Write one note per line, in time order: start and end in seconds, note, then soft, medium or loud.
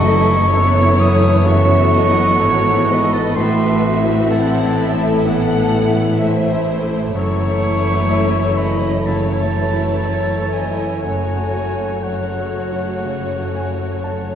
0.00 2.37 F#1 medium
0.00 0.96 F#2 medium
0.00 1.42 F#2 medium
0.00 2.37 F#2 medium
0.00 3.33 E3 medium
0.00 0.39 A3 medium
0.00 0.48 A3 medium
0.00 0.49 A4 medium
0.00 3.32 A4 medium
0.00 0.51 D#5 medium
0.00 1.02 C#6 loud
0.06 0.52 E4 medium
0.22 0.71 E4 medium
0.52 0.98 B3 medium
0.52 1.45 E4 medium
0.52 1.03 A4 medium
0.52 1.46 C#5 medium
0.52 2.40 C#5 medium
0.83 1.33 E4 medium
1.00 3.32 B3 medium
1.00 1.47 D#6 loud
1.14 1.65 A3 medium
1.45 1.96 C#3 medium
1.45 3.34 F#4 medium
1.45 1.94 E5 medium
1.45 3.14 C#6 loud
1.76 2.28 A3 medium
1.94 2.41 D#5 medium
2.08 2.60 E4 medium
2.39 3.34 G#1 medium
2.39 3.34 G#2 medium
2.39 2.91 A4 medium
2.39 2.88 C#5 medium
2.72 3.23 E4 medium
2.89 4.32 B4 medium
2.89 3.37 D#5 medium
3.04 3.36 A4 medium
3.13 3.35 A5 loud
3.34 7.15 A1 medium
3.34 7.15 A2 medium
3.34 5.22 A2 medium
3.34 6.97 E3 medium
3.34 3.83 A3 medium
3.34 4.29 F#4 medium
3.34 6.97 A4 medium
3.34 4.02 C6 loud
3.38 4.30 E5 medium
3.68 4.19 A3 medium
3.83 5.26 C4 medium
3.99 4.50 E4 medium
4.30 4.77 E4 medium
4.30 6.20 A4 medium
4.30 4.81 A4 medium
4.30 4.79 F#5 medium
4.30 5.22 A5 loud
4.62 5.13 E4 medium
4.78 5.25 E4 medium
4.78 5.27 E5 medium
4.94 5.44 A3 medium
5.25 5.76 E3 medium
5.25 6.19 B3 medium
5.25 6.19 E4 medium
5.25 6.20 F#5 medium
5.57 6.07 A3 medium
5.89 6.39 E4 medium
6.21 7.15 A3 medium
6.21 7.14 E4 medium
6.21 6.71 A4 soft
6.21 7.14 C5 medium
6.21 6.68 E5 medium
6.52 7.03 E4 medium
6.70 7.16 C5 medium
6.84 7.15 A3 soft
7.14 10.99 F#1 medium
7.14 10.99 F#2 medium
7.14 9.02 F#2 medium
7.14 10.99 E3 medium
7.14 9.03 A3 medium
7.14 9.03 E4 medium
7.14 10.99 A4 medium
7.14 9.03 C#5 medium
7.14 8.09 C#5 medium
7.14 8.59 C#6 loud
7.48 7.98 A3 soft
7.78 8.29 E4 soft
8.10 8.61 C#5 medium
8.10 8.59 E5 medium
8.43 8.94 A4 soft
8.58 9.07 D#5 medium
8.58 9.07 B5 medium
8.75 9.26 E4 medium
9.06 9.59 C#3 soft
9.06 11.00 A3 medium
9.06 11.00 E4 medium
9.06 11.00 C#5 medium
9.06 9.56 C#5 medium
9.06 10.54 A5 medium
9.41 9.92 A3 soft
9.57 10.05 B4 medium
9.72 10.24 E4 soft
10.04 10.53 C#5 medium
10.04 10.57 C#5 soft
10.38 10.90 A4 soft
10.52 11.03 D#5 soft
10.52 11.02 G#5 medium
10.69 11.03 E4 soft
11.01 14.35 F#1 soft
11.01 13.01 F#2 soft
11.01 14.35 F#2 medium
11.01 14.35 C#3 soft
11.01 14.35 A4 medium
11.01 14.35 C#5 medium
11.01 12.02 C#5 medium
11.01 12.05 G#5 medium
11.05 12.03 A3 soft
11.05 12.04 F#4 medium
11.37 11.91 A3 soft
11.72 12.25 F#4 soft
12.04 14.35 A3 soft
12.04 14.35 F#4 medium
12.04 14.35 C#5 soft
12.04 12.59 C#5 soft
12.04 14.35 F#5 medium
12.40 12.93 A4 soft
12.73 13.26 F#4 soft
13.05 13.58 C#3 soft
13.40 13.92 A3 soft
13.55 14.01 G#5 medium
13.73 14.25 F#4 soft
14.04 14.35 C#5 soft
14.04 14.35 A5 soft